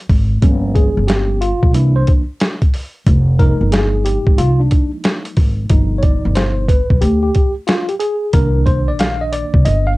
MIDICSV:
0, 0, Header, 1, 4, 480
1, 0, Start_track
1, 0, Key_signature, -3, "minor"
1, 0, Tempo, 659341
1, 309, Time_signature, 4, 2, 24, 8
1, 7262, End_track
2, 0, Start_track
2, 0, Title_t, "Tine electric piano"
2, 0, Program_c, 0, 4
2, 303, Note_on_c, 0, 53, 53
2, 307, Note_on_c, 0, 58, 55
2, 312, Note_on_c, 0, 61, 63
2, 545, Note_on_c, 0, 68, 73
2, 783, Note_on_c, 0, 67, 80
2, 795, Note_off_c, 0, 68, 0
2, 997, Note_off_c, 0, 53, 0
2, 999, Note_off_c, 0, 58, 0
2, 1002, Note_off_c, 0, 61, 0
2, 1025, Note_on_c, 0, 65, 86
2, 1034, Note_off_c, 0, 67, 0
2, 1250, Note_off_c, 0, 65, 0
2, 1263, Note_on_c, 0, 52, 53
2, 1268, Note_on_c, 0, 58, 51
2, 1271, Note_on_c, 0, 64, 84
2, 1272, Note_on_c, 0, 62, 60
2, 1416, Note_off_c, 0, 64, 0
2, 1425, Note_on_c, 0, 72, 83
2, 1534, Note_off_c, 0, 72, 0
2, 1613, Note_off_c, 0, 52, 0
2, 1616, Note_off_c, 0, 58, 0
2, 1618, Note_off_c, 0, 62, 0
2, 2466, Note_on_c, 0, 53, 55
2, 2467, Note_on_c, 0, 56, 47
2, 2469, Note_on_c, 0, 70, 97
2, 2470, Note_on_c, 0, 58, 42
2, 2473, Note_on_c, 0, 63, 55
2, 2709, Note_on_c, 0, 68, 81
2, 2716, Note_off_c, 0, 70, 0
2, 2932, Note_off_c, 0, 68, 0
2, 2946, Note_on_c, 0, 67, 82
2, 3189, Note_on_c, 0, 65, 90
2, 3195, Note_off_c, 0, 67, 0
2, 3346, Note_on_c, 0, 62, 67
2, 3351, Note_off_c, 0, 65, 0
2, 3569, Note_off_c, 0, 62, 0
2, 4119, Note_off_c, 0, 53, 0
2, 4119, Note_off_c, 0, 56, 0
2, 4121, Note_off_c, 0, 58, 0
2, 4122, Note_off_c, 0, 63, 0
2, 4145, Note_on_c, 0, 53, 55
2, 4148, Note_on_c, 0, 47, 51
2, 4153, Note_on_c, 0, 63, 64
2, 4355, Note_on_c, 0, 73, 60
2, 4386, Note_on_c, 0, 74, 76
2, 4390, Note_off_c, 0, 73, 0
2, 4625, Note_on_c, 0, 72, 74
2, 4635, Note_off_c, 0, 74, 0
2, 4838, Note_off_c, 0, 53, 0
2, 4840, Note_off_c, 0, 47, 0
2, 4842, Note_off_c, 0, 63, 0
2, 4865, Note_on_c, 0, 71, 78
2, 4875, Note_off_c, 0, 72, 0
2, 5104, Note_on_c, 0, 67, 84
2, 5115, Note_off_c, 0, 71, 0
2, 5252, Note_off_c, 0, 67, 0
2, 5262, Note_on_c, 0, 67, 71
2, 5487, Note_off_c, 0, 67, 0
2, 5584, Note_on_c, 0, 65, 81
2, 5732, Note_off_c, 0, 65, 0
2, 5741, Note_on_c, 0, 67, 73
2, 5780, Note_off_c, 0, 67, 0
2, 5821, Note_on_c, 0, 68, 85
2, 6048, Note_off_c, 0, 68, 0
2, 6065, Note_on_c, 0, 51, 52
2, 6067, Note_on_c, 0, 70, 103
2, 6070, Note_on_c, 0, 58, 54
2, 6075, Note_on_c, 0, 62, 59
2, 6291, Note_off_c, 0, 70, 0
2, 6303, Note_on_c, 0, 72, 86
2, 6465, Note_on_c, 0, 74, 89
2, 6468, Note_off_c, 0, 72, 0
2, 6551, Note_off_c, 0, 74, 0
2, 6551, Note_on_c, 0, 77, 86
2, 6707, Note_on_c, 0, 75, 90
2, 6712, Note_off_c, 0, 77, 0
2, 6784, Note_off_c, 0, 75, 0
2, 6789, Note_on_c, 0, 74, 98
2, 7026, Note_on_c, 0, 75, 98
2, 7036, Note_off_c, 0, 74, 0
2, 7173, Note_off_c, 0, 75, 0
2, 7185, Note_on_c, 0, 77, 91
2, 7222, Note_off_c, 0, 77, 0
2, 7262, Note_off_c, 0, 51, 0
2, 7262, Note_off_c, 0, 58, 0
2, 7262, Note_off_c, 0, 62, 0
2, 7262, End_track
3, 0, Start_track
3, 0, Title_t, "Upright bass"
3, 0, Program_c, 1, 32
3, 68, Note_on_c, 1, 32, 86
3, 266, Note_off_c, 1, 32, 0
3, 308, Note_on_c, 1, 31, 94
3, 634, Note_off_c, 1, 31, 0
3, 706, Note_on_c, 1, 31, 88
3, 1100, Note_off_c, 1, 31, 0
3, 1186, Note_on_c, 1, 34, 81
3, 1267, Note_off_c, 1, 34, 0
3, 1267, Note_on_c, 1, 36, 103
3, 1465, Note_off_c, 1, 36, 0
3, 2232, Note_on_c, 1, 29, 106
3, 2556, Note_off_c, 1, 29, 0
3, 2627, Note_on_c, 1, 31, 94
3, 3020, Note_off_c, 1, 31, 0
3, 3106, Note_on_c, 1, 32, 69
3, 3175, Note_off_c, 1, 32, 0
3, 3190, Note_on_c, 1, 36, 90
3, 3387, Note_off_c, 1, 36, 0
3, 3911, Note_on_c, 1, 32, 85
3, 4107, Note_off_c, 1, 32, 0
3, 4151, Note_on_c, 1, 31, 91
3, 4476, Note_off_c, 1, 31, 0
3, 4550, Note_on_c, 1, 31, 91
3, 4942, Note_off_c, 1, 31, 0
3, 5025, Note_on_c, 1, 35, 80
3, 5094, Note_off_c, 1, 35, 0
3, 5110, Note_on_c, 1, 38, 97
3, 5307, Note_off_c, 1, 38, 0
3, 6069, Note_on_c, 1, 36, 90
3, 6470, Note_off_c, 1, 36, 0
3, 6470, Note_on_c, 1, 34, 99
3, 6862, Note_off_c, 1, 34, 0
3, 6944, Note_on_c, 1, 36, 81
3, 7013, Note_off_c, 1, 36, 0
3, 7033, Note_on_c, 1, 31, 90
3, 7228, Note_off_c, 1, 31, 0
3, 7262, End_track
4, 0, Start_track
4, 0, Title_t, "Drums"
4, 69, Note_on_c, 9, 36, 96
4, 69, Note_on_c, 9, 46, 48
4, 142, Note_off_c, 9, 36, 0
4, 142, Note_off_c, 9, 46, 0
4, 308, Note_on_c, 9, 42, 101
4, 309, Note_on_c, 9, 36, 121
4, 381, Note_off_c, 9, 42, 0
4, 382, Note_off_c, 9, 36, 0
4, 549, Note_on_c, 9, 36, 82
4, 550, Note_on_c, 9, 42, 60
4, 622, Note_off_c, 9, 36, 0
4, 623, Note_off_c, 9, 42, 0
4, 788, Note_on_c, 9, 42, 75
4, 798, Note_on_c, 9, 38, 91
4, 860, Note_off_c, 9, 42, 0
4, 871, Note_off_c, 9, 38, 0
4, 1031, Note_on_c, 9, 42, 81
4, 1104, Note_off_c, 9, 42, 0
4, 1185, Note_on_c, 9, 36, 94
4, 1257, Note_off_c, 9, 36, 0
4, 1269, Note_on_c, 9, 42, 91
4, 1342, Note_off_c, 9, 42, 0
4, 1508, Note_on_c, 9, 42, 58
4, 1516, Note_on_c, 9, 36, 84
4, 1581, Note_off_c, 9, 42, 0
4, 1589, Note_off_c, 9, 36, 0
4, 1749, Note_on_c, 9, 42, 76
4, 1757, Note_on_c, 9, 38, 114
4, 1822, Note_off_c, 9, 42, 0
4, 1830, Note_off_c, 9, 38, 0
4, 1905, Note_on_c, 9, 42, 50
4, 1906, Note_on_c, 9, 36, 102
4, 1978, Note_off_c, 9, 42, 0
4, 1979, Note_off_c, 9, 36, 0
4, 1992, Note_on_c, 9, 46, 49
4, 2065, Note_off_c, 9, 46, 0
4, 2232, Note_on_c, 9, 36, 121
4, 2232, Note_on_c, 9, 42, 96
4, 2304, Note_off_c, 9, 36, 0
4, 2304, Note_off_c, 9, 42, 0
4, 2471, Note_on_c, 9, 36, 76
4, 2472, Note_on_c, 9, 42, 56
4, 2544, Note_off_c, 9, 36, 0
4, 2545, Note_off_c, 9, 42, 0
4, 2709, Note_on_c, 9, 42, 87
4, 2720, Note_on_c, 9, 38, 99
4, 2782, Note_off_c, 9, 42, 0
4, 2792, Note_off_c, 9, 38, 0
4, 2953, Note_on_c, 9, 42, 88
4, 3026, Note_off_c, 9, 42, 0
4, 3106, Note_on_c, 9, 36, 101
4, 3179, Note_off_c, 9, 36, 0
4, 3191, Note_on_c, 9, 42, 105
4, 3263, Note_off_c, 9, 42, 0
4, 3429, Note_on_c, 9, 42, 63
4, 3437, Note_on_c, 9, 36, 77
4, 3502, Note_off_c, 9, 42, 0
4, 3510, Note_off_c, 9, 36, 0
4, 3668, Note_on_c, 9, 42, 86
4, 3677, Note_on_c, 9, 38, 118
4, 3741, Note_off_c, 9, 42, 0
4, 3749, Note_off_c, 9, 38, 0
4, 3823, Note_on_c, 9, 42, 50
4, 3896, Note_off_c, 9, 42, 0
4, 3907, Note_on_c, 9, 46, 58
4, 3909, Note_on_c, 9, 36, 91
4, 3980, Note_off_c, 9, 46, 0
4, 3982, Note_off_c, 9, 36, 0
4, 4146, Note_on_c, 9, 42, 100
4, 4150, Note_on_c, 9, 36, 127
4, 4219, Note_off_c, 9, 42, 0
4, 4223, Note_off_c, 9, 36, 0
4, 4387, Note_on_c, 9, 42, 60
4, 4389, Note_on_c, 9, 36, 77
4, 4460, Note_off_c, 9, 42, 0
4, 4462, Note_off_c, 9, 36, 0
4, 4625, Note_on_c, 9, 42, 75
4, 4636, Note_on_c, 9, 38, 86
4, 4698, Note_off_c, 9, 42, 0
4, 4708, Note_off_c, 9, 38, 0
4, 4867, Note_on_c, 9, 36, 100
4, 4871, Note_on_c, 9, 42, 91
4, 4939, Note_off_c, 9, 36, 0
4, 4944, Note_off_c, 9, 42, 0
4, 5025, Note_on_c, 9, 36, 93
4, 5098, Note_off_c, 9, 36, 0
4, 5108, Note_on_c, 9, 42, 92
4, 5181, Note_off_c, 9, 42, 0
4, 5348, Note_on_c, 9, 42, 65
4, 5356, Note_on_c, 9, 36, 75
4, 5421, Note_off_c, 9, 42, 0
4, 5429, Note_off_c, 9, 36, 0
4, 5589, Note_on_c, 9, 42, 77
4, 5597, Note_on_c, 9, 38, 105
4, 5662, Note_off_c, 9, 42, 0
4, 5670, Note_off_c, 9, 38, 0
4, 5742, Note_on_c, 9, 42, 47
4, 5815, Note_off_c, 9, 42, 0
4, 5827, Note_on_c, 9, 42, 80
4, 5900, Note_off_c, 9, 42, 0
4, 6066, Note_on_c, 9, 42, 109
4, 6069, Note_on_c, 9, 36, 124
4, 6139, Note_off_c, 9, 42, 0
4, 6142, Note_off_c, 9, 36, 0
4, 6309, Note_on_c, 9, 36, 78
4, 6309, Note_on_c, 9, 42, 56
4, 6382, Note_off_c, 9, 36, 0
4, 6382, Note_off_c, 9, 42, 0
4, 6546, Note_on_c, 9, 42, 88
4, 6556, Note_on_c, 9, 38, 92
4, 6619, Note_off_c, 9, 42, 0
4, 6629, Note_off_c, 9, 38, 0
4, 6791, Note_on_c, 9, 42, 88
4, 6863, Note_off_c, 9, 42, 0
4, 6945, Note_on_c, 9, 36, 97
4, 7017, Note_off_c, 9, 36, 0
4, 7029, Note_on_c, 9, 42, 97
4, 7102, Note_off_c, 9, 42, 0
4, 7262, End_track
0, 0, End_of_file